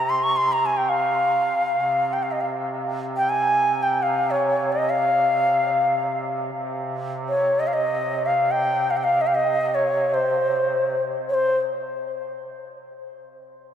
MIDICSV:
0, 0, Header, 1, 3, 480
1, 0, Start_track
1, 0, Tempo, 500000
1, 13190, End_track
2, 0, Start_track
2, 0, Title_t, "Ney"
2, 0, Program_c, 0, 77
2, 0, Note_on_c, 0, 82, 81
2, 91, Note_on_c, 0, 84, 85
2, 106, Note_off_c, 0, 82, 0
2, 219, Note_on_c, 0, 85, 85
2, 233, Note_off_c, 0, 84, 0
2, 350, Note_on_c, 0, 84, 85
2, 365, Note_off_c, 0, 85, 0
2, 503, Note_on_c, 0, 82, 78
2, 517, Note_off_c, 0, 84, 0
2, 631, Note_on_c, 0, 80, 79
2, 646, Note_off_c, 0, 82, 0
2, 742, Note_on_c, 0, 79, 76
2, 756, Note_off_c, 0, 80, 0
2, 856, Note_on_c, 0, 77, 75
2, 871, Note_off_c, 0, 79, 0
2, 2044, Note_on_c, 0, 79, 58
2, 2059, Note_off_c, 0, 77, 0
2, 2139, Note_on_c, 0, 77, 56
2, 2154, Note_off_c, 0, 79, 0
2, 2224, Note_on_c, 0, 75, 57
2, 2238, Note_off_c, 0, 77, 0
2, 2312, Note_on_c, 0, 77, 51
2, 2326, Note_off_c, 0, 75, 0
2, 2395, Note_off_c, 0, 77, 0
2, 3042, Note_on_c, 0, 79, 91
2, 3162, Note_on_c, 0, 80, 95
2, 3176, Note_off_c, 0, 79, 0
2, 3673, Note_on_c, 0, 79, 80
2, 3687, Note_off_c, 0, 80, 0
2, 3863, Note_on_c, 0, 77, 74
2, 3878, Note_off_c, 0, 79, 0
2, 4136, Note_on_c, 0, 73, 70
2, 4150, Note_off_c, 0, 77, 0
2, 4533, Note_on_c, 0, 75, 72
2, 4548, Note_off_c, 0, 73, 0
2, 4701, Note_on_c, 0, 77, 85
2, 4715, Note_off_c, 0, 75, 0
2, 5906, Note_off_c, 0, 77, 0
2, 6995, Note_on_c, 0, 73, 75
2, 7295, Note_on_c, 0, 75, 81
2, 7309, Note_off_c, 0, 73, 0
2, 7364, Note_on_c, 0, 77, 68
2, 7379, Note_off_c, 0, 75, 0
2, 7423, Note_on_c, 0, 75, 79
2, 7438, Note_off_c, 0, 77, 0
2, 7929, Note_on_c, 0, 77, 74
2, 7944, Note_off_c, 0, 75, 0
2, 8171, Note_on_c, 0, 79, 84
2, 8185, Note_off_c, 0, 77, 0
2, 8549, Note_on_c, 0, 77, 73
2, 8563, Note_off_c, 0, 79, 0
2, 8609, Note_on_c, 0, 79, 65
2, 8623, Note_off_c, 0, 77, 0
2, 8677, Note_on_c, 0, 77, 88
2, 8691, Note_off_c, 0, 79, 0
2, 8844, Note_on_c, 0, 75, 79
2, 8858, Note_off_c, 0, 77, 0
2, 8897, Note_on_c, 0, 77, 71
2, 8911, Note_off_c, 0, 75, 0
2, 8974, Note_on_c, 0, 75, 83
2, 8988, Note_off_c, 0, 77, 0
2, 9357, Note_on_c, 0, 73, 75
2, 9371, Note_off_c, 0, 75, 0
2, 9731, Note_on_c, 0, 72, 65
2, 9746, Note_off_c, 0, 73, 0
2, 10562, Note_off_c, 0, 72, 0
2, 10841, Note_on_c, 0, 73, 70
2, 10889, Note_on_c, 0, 72, 76
2, 10898, Note_off_c, 0, 73, 0
2, 11105, Note_off_c, 0, 72, 0
2, 13190, End_track
3, 0, Start_track
3, 0, Title_t, "Duduk"
3, 0, Program_c, 1, 69
3, 0, Note_on_c, 1, 48, 60
3, 1527, Note_off_c, 1, 48, 0
3, 1690, Note_on_c, 1, 48, 57
3, 6253, Note_off_c, 1, 48, 0
3, 6258, Note_on_c, 1, 48, 57
3, 10891, Note_off_c, 1, 48, 0
3, 13190, End_track
0, 0, End_of_file